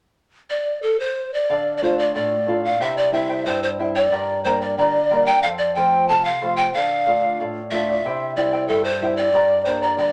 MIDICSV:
0, 0, Header, 1, 4, 480
1, 0, Start_track
1, 0, Key_signature, -1, "minor"
1, 0, Tempo, 653595
1, 131, Time_signature, 2, 2, 24, 8
1, 7434, End_track
2, 0, Start_track
2, 0, Title_t, "Charango"
2, 0, Program_c, 0, 24
2, 1096, Note_on_c, 0, 69, 70
2, 1098, Note_on_c, 0, 74, 73
2, 1103, Note_on_c, 0, 77, 83
2, 1329, Note_off_c, 0, 69, 0
2, 1336, Note_off_c, 0, 74, 0
2, 1337, Note_on_c, 0, 69, 50
2, 1340, Note_off_c, 0, 77, 0
2, 1344, Note_on_c, 0, 74, 50
2, 1348, Note_on_c, 0, 77, 50
2, 1448, Note_off_c, 0, 77, 0
2, 1454, Note_off_c, 0, 74, 0
2, 1456, Note_on_c, 0, 77, 43
2, 1457, Note_off_c, 0, 69, 0
2, 1463, Note_on_c, 0, 74, 33
2, 1567, Note_off_c, 0, 74, 0
2, 1572, Note_on_c, 0, 69, 47
2, 1573, Note_off_c, 0, 77, 0
2, 1576, Note_on_c, 0, 74, 52
2, 1582, Note_on_c, 0, 77, 59
2, 1808, Note_off_c, 0, 69, 0
2, 1814, Note_off_c, 0, 74, 0
2, 1817, Note_on_c, 0, 69, 49
2, 1820, Note_off_c, 0, 77, 0
2, 1823, Note_on_c, 0, 74, 54
2, 1829, Note_on_c, 0, 77, 57
2, 1926, Note_off_c, 0, 77, 0
2, 1935, Note_on_c, 0, 77, 43
2, 1937, Note_off_c, 0, 69, 0
2, 1940, Note_off_c, 0, 74, 0
2, 1950, Note_on_c, 0, 74, 35
2, 2054, Note_off_c, 0, 77, 0
2, 2057, Note_on_c, 0, 76, 66
2, 2059, Note_on_c, 0, 67, 66
2, 2061, Note_off_c, 0, 74, 0
2, 2061, Note_on_c, 0, 64, 69
2, 2064, Note_on_c, 0, 72, 76
2, 2064, Note_on_c, 0, 79, 68
2, 2283, Note_off_c, 0, 76, 0
2, 2288, Note_off_c, 0, 64, 0
2, 2292, Note_on_c, 0, 76, 48
2, 2293, Note_off_c, 0, 72, 0
2, 2293, Note_off_c, 0, 79, 0
2, 2297, Note_on_c, 0, 64, 51
2, 2300, Note_off_c, 0, 67, 0
2, 2302, Note_on_c, 0, 72, 57
2, 2302, Note_on_c, 0, 79, 52
2, 2409, Note_off_c, 0, 79, 0
2, 2415, Note_off_c, 0, 72, 0
2, 2416, Note_off_c, 0, 76, 0
2, 2417, Note_off_c, 0, 64, 0
2, 2418, Note_on_c, 0, 79, 48
2, 2423, Note_on_c, 0, 72, 38
2, 2426, Note_on_c, 0, 64, 39
2, 2537, Note_off_c, 0, 64, 0
2, 2538, Note_on_c, 0, 76, 49
2, 2539, Note_off_c, 0, 72, 0
2, 2539, Note_off_c, 0, 79, 0
2, 2546, Note_on_c, 0, 64, 56
2, 2548, Note_on_c, 0, 72, 57
2, 2551, Note_on_c, 0, 79, 55
2, 2775, Note_off_c, 0, 76, 0
2, 2778, Note_off_c, 0, 64, 0
2, 2780, Note_off_c, 0, 72, 0
2, 2783, Note_off_c, 0, 79, 0
2, 2784, Note_on_c, 0, 76, 53
2, 2787, Note_on_c, 0, 64, 58
2, 2789, Note_on_c, 0, 72, 57
2, 2792, Note_on_c, 0, 79, 53
2, 2899, Note_off_c, 0, 79, 0
2, 2902, Note_off_c, 0, 76, 0
2, 2904, Note_off_c, 0, 64, 0
2, 2905, Note_off_c, 0, 72, 0
2, 2908, Note_on_c, 0, 79, 45
2, 2914, Note_on_c, 0, 72, 36
2, 2919, Note_on_c, 0, 64, 36
2, 3017, Note_off_c, 0, 79, 0
2, 3024, Note_on_c, 0, 67, 68
2, 3026, Note_off_c, 0, 64, 0
2, 3026, Note_on_c, 0, 79, 71
2, 3027, Note_off_c, 0, 72, 0
2, 3029, Note_on_c, 0, 70, 69
2, 3030, Note_on_c, 0, 74, 66
2, 3035, Note_on_c, 0, 82, 75
2, 3261, Note_off_c, 0, 79, 0
2, 3263, Note_off_c, 0, 67, 0
2, 3266, Note_off_c, 0, 70, 0
2, 3266, Note_off_c, 0, 74, 0
2, 3269, Note_off_c, 0, 82, 0
2, 3269, Note_on_c, 0, 79, 46
2, 3274, Note_on_c, 0, 70, 47
2, 3275, Note_on_c, 0, 74, 53
2, 3279, Note_on_c, 0, 82, 52
2, 3378, Note_off_c, 0, 82, 0
2, 3385, Note_off_c, 0, 74, 0
2, 3386, Note_off_c, 0, 79, 0
2, 3387, Note_on_c, 0, 82, 41
2, 3388, Note_off_c, 0, 70, 0
2, 3394, Note_on_c, 0, 74, 44
2, 3396, Note_on_c, 0, 70, 35
2, 3503, Note_off_c, 0, 70, 0
2, 3505, Note_off_c, 0, 74, 0
2, 3505, Note_off_c, 0, 82, 0
2, 3506, Note_on_c, 0, 79, 52
2, 3512, Note_on_c, 0, 70, 52
2, 3514, Note_on_c, 0, 74, 60
2, 3519, Note_on_c, 0, 82, 62
2, 3740, Note_off_c, 0, 79, 0
2, 3745, Note_off_c, 0, 70, 0
2, 3749, Note_off_c, 0, 74, 0
2, 3749, Note_on_c, 0, 79, 59
2, 3751, Note_off_c, 0, 82, 0
2, 3754, Note_on_c, 0, 70, 51
2, 3758, Note_on_c, 0, 74, 54
2, 3760, Note_on_c, 0, 82, 54
2, 3862, Note_off_c, 0, 82, 0
2, 3866, Note_off_c, 0, 79, 0
2, 3868, Note_off_c, 0, 74, 0
2, 3869, Note_off_c, 0, 70, 0
2, 3871, Note_on_c, 0, 82, 46
2, 3876, Note_on_c, 0, 74, 35
2, 3879, Note_on_c, 0, 70, 39
2, 3987, Note_off_c, 0, 82, 0
2, 3990, Note_off_c, 0, 70, 0
2, 3990, Note_off_c, 0, 74, 0
2, 3993, Note_on_c, 0, 69, 59
2, 3999, Note_on_c, 0, 72, 72
2, 4000, Note_on_c, 0, 77, 72
2, 4220, Note_off_c, 0, 69, 0
2, 4227, Note_off_c, 0, 72, 0
2, 4229, Note_on_c, 0, 69, 47
2, 4232, Note_off_c, 0, 77, 0
2, 4236, Note_on_c, 0, 72, 46
2, 4241, Note_on_c, 0, 77, 47
2, 4339, Note_off_c, 0, 77, 0
2, 4345, Note_off_c, 0, 72, 0
2, 4346, Note_off_c, 0, 69, 0
2, 4348, Note_on_c, 0, 77, 45
2, 4360, Note_on_c, 0, 72, 36
2, 4466, Note_off_c, 0, 77, 0
2, 4470, Note_off_c, 0, 72, 0
2, 4474, Note_on_c, 0, 69, 50
2, 4479, Note_on_c, 0, 72, 48
2, 4485, Note_on_c, 0, 77, 61
2, 4699, Note_off_c, 0, 69, 0
2, 4705, Note_off_c, 0, 72, 0
2, 4708, Note_on_c, 0, 69, 48
2, 4711, Note_off_c, 0, 77, 0
2, 4714, Note_on_c, 0, 72, 51
2, 4720, Note_on_c, 0, 77, 59
2, 4818, Note_off_c, 0, 77, 0
2, 4824, Note_off_c, 0, 72, 0
2, 4826, Note_off_c, 0, 69, 0
2, 4827, Note_on_c, 0, 77, 40
2, 4837, Note_on_c, 0, 72, 35
2, 4945, Note_off_c, 0, 77, 0
2, 4950, Note_off_c, 0, 72, 0
2, 4955, Note_on_c, 0, 69, 64
2, 4958, Note_on_c, 0, 74, 66
2, 4960, Note_on_c, 0, 77, 73
2, 5181, Note_off_c, 0, 69, 0
2, 5186, Note_off_c, 0, 74, 0
2, 5189, Note_on_c, 0, 69, 52
2, 5191, Note_off_c, 0, 77, 0
2, 5195, Note_on_c, 0, 74, 51
2, 5202, Note_on_c, 0, 77, 50
2, 5302, Note_off_c, 0, 77, 0
2, 5306, Note_off_c, 0, 69, 0
2, 5309, Note_off_c, 0, 74, 0
2, 5310, Note_on_c, 0, 77, 41
2, 5322, Note_on_c, 0, 74, 37
2, 5426, Note_off_c, 0, 77, 0
2, 5427, Note_off_c, 0, 74, 0
2, 5433, Note_on_c, 0, 69, 52
2, 5436, Note_on_c, 0, 74, 55
2, 5443, Note_on_c, 0, 77, 56
2, 5667, Note_off_c, 0, 69, 0
2, 5669, Note_off_c, 0, 74, 0
2, 5672, Note_off_c, 0, 77, 0
2, 5677, Note_on_c, 0, 69, 48
2, 5680, Note_on_c, 0, 74, 53
2, 5684, Note_on_c, 0, 77, 54
2, 5783, Note_off_c, 0, 77, 0
2, 5789, Note_off_c, 0, 69, 0
2, 5791, Note_off_c, 0, 74, 0
2, 5792, Note_on_c, 0, 77, 46
2, 5800, Note_on_c, 0, 74, 39
2, 5906, Note_off_c, 0, 77, 0
2, 5910, Note_off_c, 0, 74, 0
2, 5912, Note_on_c, 0, 67, 66
2, 5917, Note_on_c, 0, 64, 78
2, 5917, Note_on_c, 0, 76, 73
2, 5920, Note_on_c, 0, 72, 81
2, 5921, Note_on_c, 0, 79, 69
2, 6137, Note_off_c, 0, 76, 0
2, 6141, Note_off_c, 0, 64, 0
2, 6145, Note_off_c, 0, 67, 0
2, 6146, Note_on_c, 0, 76, 51
2, 6148, Note_off_c, 0, 72, 0
2, 6148, Note_off_c, 0, 79, 0
2, 6150, Note_on_c, 0, 64, 50
2, 6156, Note_on_c, 0, 72, 50
2, 6157, Note_on_c, 0, 79, 52
2, 6255, Note_off_c, 0, 79, 0
2, 6262, Note_off_c, 0, 72, 0
2, 6262, Note_off_c, 0, 76, 0
2, 6264, Note_off_c, 0, 64, 0
2, 6264, Note_on_c, 0, 79, 49
2, 6271, Note_on_c, 0, 72, 40
2, 6272, Note_on_c, 0, 64, 34
2, 6379, Note_off_c, 0, 64, 0
2, 6381, Note_off_c, 0, 79, 0
2, 6383, Note_on_c, 0, 76, 55
2, 6384, Note_off_c, 0, 72, 0
2, 6387, Note_on_c, 0, 64, 53
2, 6392, Note_on_c, 0, 72, 47
2, 6395, Note_on_c, 0, 79, 57
2, 6616, Note_off_c, 0, 76, 0
2, 6621, Note_off_c, 0, 64, 0
2, 6624, Note_off_c, 0, 72, 0
2, 6625, Note_off_c, 0, 79, 0
2, 6625, Note_on_c, 0, 76, 58
2, 6632, Note_on_c, 0, 64, 55
2, 6633, Note_on_c, 0, 72, 55
2, 6634, Note_on_c, 0, 79, 55
2, 6740, Note_off_c, 0, 76, 0
2, 6742, Note_off_c, 0, 79, 0
2, 6744, Note_off_c, 0, 64, 0
2, 6744, Note_off_c, 0, 72, 0
2, 6750, Note_on_c, 0, 79, 46
2, 6756, Note_on_c, 0, 72, 40
2, 6759, Note_on_c, 0, 64, 38
2, 6855, Note_off_c, 0, 79, 0
2, 6860, Note_off_c, 0, 64, 0
2, 6860, Note_on_c, 0, 67, 64
2, 6863, Note_on_c, 0, 70, 68
2, 6864, Note_on_c, 0, 79, 68
2, 6865, Note_off_c, 0, 72, 0
2, 6868, Note_on_c, 0, 74, 74
2, 6869, Note_on_c, 0, 82, 67
2, 7084, Note_off_c, 0, 79, 0
2, 7090, Note_off_c, 0, 70, 0
2, 7092, Note_off_c, 0, 74, 0
2, 7093, Note_on_c, 0, 79, 53
2, 7096, Note_off_c, 0, 67, 0
2, 7096, Note_off_c, 0, 82, 0
2, 7099, Note_on_c, 0, 70, 48
2, 7100, Note_on_c, 0, 74, 57
2, 7105, Note_on_c, 0, 82, 53
2, 7209, Note_off_c, 0, 82, 0
2, 7212, Note_off_c, 0, 79, 0
2, 7215, Note_off_c, 0, 70, 0
2, 7216, Note_off_c, 0, 74, 0
2, 7218, Note_on_c, 0, 82, 47
2, 7224, Note_on_c, 0, 70, 35
2, 7225, Note_on_c, 0, 74, 40
2, 7325, Note_off_c, 0, 70, 0
2, 7327, Note_off_c, 0, 74, 0
2, 7331, Note_on_c, 0, 79, 57
2, 7332, Note_off_c, 0, 82, 0
2, 7334, Note_on_c, 0, 70, 50
2, 7336, Note_on_c, 0, 74, 53
2, 7341, Note_on_c, 0, 82, 51
2, 7434, Note_off_c, 0, 70, 0
2, 7434, Note_off_c, 0, 74, 0
2, 7434, Note_off_c, 0, 79, 0
2, 7434, Note_off_c, 0, 82, 0
2, 7434, End_track
3, 0, Start_track
3, 0, Title_t, "Pan flute"
3, 0, Program_c, 1, 75
3, 367, Note_on_c, 1, 74, 61
3, 593, Note_off_c, 1, 74, 0
3, 605, Note_on_c, 1, 69, 66
3, 732, Note_on_c, 1, 72, 70
3, 743, Note_off_c, 1, 69, 0
3, 982, Note_on_c, 1, 74, 85
3, 993, Note_off_c, 1, 72, 0
3, 1298, Note_off_c, 1, 74, 0
3, 1303, Note_on_c, 1, 74, 54
3, 1345, Note_on_c, 1, 72, 65
3, 1356, Note_off_c, 1, 74, 0
3, 1456, Note_off_c, 1, 72, 0
3, 1461, Note_on_c, 1, 74, 66
3, 1571, Note_off_c, 1, 74, 0
3, 1580, Note_on_c, 1, 74, 69
3, 1914, Note_off_c, 1, 74, 0
3, 1947, Note_on_c, 1, 77, 79
3, 2066, Note_on_c, 1, 76, 80
3, 2077, Note_off_c, 1, 77, 0
3, 2179, Note_off_c, 1, 76, 0
3, 2183, Note_on_c, 1, 74, 77
3, 2293, Note_off_c, 1, 74, 0
3, 2302, Note_on_c, 1, 76, 73
3, 2538, Note_on_c, 1, 72, 75
3, 2549, Note_off_c, 1, 76, 0
3, 2659, Note_off_c, 1, 72, 0
3, 2666, Note_on_c, 1, 72, 72
3, 2720, Note_off_c, 1, 72, 0
3, 2906, Note_on_c, 1, 74, 86
3, 3239, Note_off_c, 1, 74, 0
3, 3264, Note_on_c, 1, 72, 76
3, 3387, Note_on_c, 1, 74, 69
3, 3398, Note_off_c, 1, 72, 0
3, 3505, Note_off_c, 1, 74, 0
3, 3510, Note_on_c, 1, 74, 85
3, 3865, Note_on_c, 1, 79, 90
3, 3876, Note_off_c, 1, 74, 0
3, 3981, Note_off_c, 1, 79, 0
3, 3985, Note_on_c, 1, 77, 88
3, 4029, Note_off_c, 1, 77, 0
3, 4100, Note_on_c, 1, 74, 76
3, 4214, Note_off_c, 1, 74, 0
3, 4225, Note_on_c, 1, 79, 78
3, 4468, Note_on_c, 1, 81, 88
3, 4479, Note_off_c, 1, 79, 0
3, 4589, Note_on_c, 1, 77, 85
3, 4600, Note_off_c, 1, 81, 0
3, 4816, Note_off_c, 1, 77, 0
3, 4821, Note_on_c, 1, 79, 87
3, 4933, Note_off_c, 1, 79, 0
3, 4948, Note_on_c, 1, 77, 98
3, 5430, Note_off_c, 1, 77, 0
3, 5661, Note_on_c, 1, 76, 84
3, 6110, Note_off_c, 1, 76, 0
3, 6143, Note_on_c, 1, 74, 67
3, 6363, Note_off_c, 1, 74, 0
3, 6376, Note_on_c, 1, 69, 70
3, 6495, Note_on_c, 1, 72, 82
3, 6506, Note_off_c, 1, 69, 0
3, 6733, Note_on_c, 1, 74, 85
3, 6744, Note_off_c, 1, 72, 0
3, 7085, Note_off_c, 1, 74, 0
3, 7089, Note_on_c, 1, 72, 73
3, 7213, Note_on_c, 1, 74, 64
3, 7224, Note_off_c, 1, 72, 0
3, 7324, Note_off_c, 1, 74, 0
3, 7329, Note_on_c, 1, 74, 76
3, 7434, Note_off_c, 1, 74, 0
3, 7434, End_track
4, 0, Start_track
4, 0, Title_t, "Nylon-string guitar"
4, 0, Program_c, 2, 24
4, 1099, Note_on_c, 2, 50, 51
4, 1333, Note_on_c, 2, 57, 45
4, 1340, Note_on_c, 2, 65, 49
4, 1341, Note_on_c, 2, 62, 41
4, 1564, Note_off_c, 2, 50, 0
4, 1578, Note_on_c, 2, 45, 64
4, 1719, Note_off_c, 2, 57, 0
4, 1723, Note_off_c, 2, 65, 0
4, 1724, Note_off_c, 2, 62, 0
4, 1812, Note_on_c, 2, 57, 42
4, 1814, Note_on_c, 2, 62, 42
4, 1820, Note_on_c, 2, 65, 47
4, 2007, Note_off_c, 2, 57, 0
4, 2008, Note_off_c, 2, 62, 0
4, 2012, Note_off_c, 2, 65, 0
4, 2044, Note_off_c, 2, 45, 0
4, 2051, Note_on_c, 2, 48, 60
4, 2289, Note_on_c, 2, 55, 48
4, 2294, Note_on_c, 2, 60, 43
4, 2296, Note_on_c, 2, 64, 46
4, 2521, Note_off_c, 2, 48, 0
4, 2538, Note_on_c, 2, 43, 69
4, 2679, Note_off_c, 2, 55, 0
4, 2680, Note_off_c, 2, 60, 0
4, 2683, Note_off_c, 2, 64, 0
4, 2780, Note_on_c, 2, 55, 42
4, 2783, Note_on_c, 2, 60, 42
4, 2788, Note_on_c, 2, 64, 49
4, 2973, Note_off_c, 2, 60, 0
4, 2974, Note_off_c, 2, 55, 0
4, 2978, Note_off_c, 2, 64, 0
4, 3006, Note_off_c, 2, 43, 0
4, 3022, Note_on_c, 2, 43, 58
4, 3265, Note_on_c, 2, 55, 47
4, 3270, Note_on_c, 2, 58, 40
4, 3274, Note_on_c, 2, 62, 50
4, 3488, Note_off_c, 2, 43, 0
4, 3511, Note_on_c, 2, 50, 63
4, 3649, Note_off_c, 2, 55, 0
4, 3652, Note_off_c, 2, 58, 0
4, 3654, Note_off_c, 2, 62, 0
4, 3752, Note_on_c, 2, 55, 45
4, 3758, Note_on_c, 2, 58, 45
4, 3762, Note_on_c, 2, 62, 48
4, 3941, Note_off_c, 2, 55, 0
4, 3945, Note_off_c, 2, 58, 0
4, 3947, Note_off_c, 2, 62, 0
4, 3973, Note_off_c, 2, 50, 0
4, 4000, Note_on_c, 2, 41, 56
4, 4236, Note_on_c, 2, 53, 42
4, 4240, Note_on_c, 2, 57, 43
4, 4241, Note_on_c, 2, 60, 49
4, 4458, Note_off_c, 2, 41, 0
4, 4482, Note_on_c, 2, 48, 60
4, 4616, Note_off_c, 2, 53, 0
4, 4617, Note_off_c, 2, 57, 0
4, 4618, Note_off_c, 2, 60, 0
4, 4712, Note_on_c, 2, 53, 46
4, 4716, Note_on_c, 2, 57, 40
4, 4719, Note_on_c, 2, 60, 44
4, 4901, Note_off_c, 2, 53, 0
4, 4904, Note_off_c, 2, 57, 0
4, 4904, Note_off_c, 2, 60, 0
4, 4939, Note_off_c, 2, 48, 0
4, 4958, Note_on_c, 2, 50, 57
4, 5189, Note_on_c, 2, 57, 43
4, 5191, Note_on_c, 2, 62, 42
4, 5196, Note_on_c, 2, 65, 48
4, 5416, Note_off_c, 2, 50, 0
4, 5435, Note_on_c, 2, 45, 61
4, 5570, Note_off_c, 2, 57, 0
4, 5572, Note_off_c, 2, 62, 0
4, 5573, Note_off_c, 2, 65, 0
4, 5666, Note_on_c, 2, 57, 47
4, 5670, Note_on_c, 2, 62, 39
4, 5674, Note_on_c, 2, 65, 52
4, 5856, Note_off_c, 2, 57, 0
4, 5859, Note_off_c, 2, 62, 0
4, 5860, Note_off_c, 2, 65, 0
4, 5893, Note_off_c, 2, 45, 0
4, 5905, Note_on_c, 2, 48, 57
4, 6140, Note_on_c, 2, 55, 43
4, 6145, Note_on_c, 2, 60, 38
4, 6149, Note_on_c, 2, 64, 48
4, 6366, Note_off_c, 2, 48, 0
4, 6385, Note_on_c, 2, 43, 61
4, 6522, Note_off_c, 2, 55, 0
4, 6525, Note_off_c, 2, 60, 0
4, 6527, Note_off_c, 2, 64, 0
4, 6618, Note_on_c, 2, 55, 47
4, 6623, Note_on_c, 2, 60, 42
4, 6625, Note_on_c, 2, 64, 51
4, 6808, Note_off_c, 2, 55, 0
4, 6812, Note_off_c, 2, 60, 0
4, 6812, Note_off_c, 2, 64, 0
4, 6842, Note_off_c, 2, 43, 0
4, 6851, Note_on_c, 2, 43, 63
4, 7086, Note_on_c, 2, 55, 42
4, 7089, Note_on_c, 2, 58, 46
4, 7092, Note_on_c, 2, 62, 50
4, 7315, Note_off_c, 2, 43, 0
4, 7323, Note_on_c, 2, 50, 67
4, 7434, Note_off_c, 2, 50, 0
4, 7434, Note_off_c, 2, 55, 0
4, 7434, Note_off_c, 2, 58, 0
4, 7434, Note_off_c, 2, 62, 0
4, 7434, End_track
0, 0, End_of_file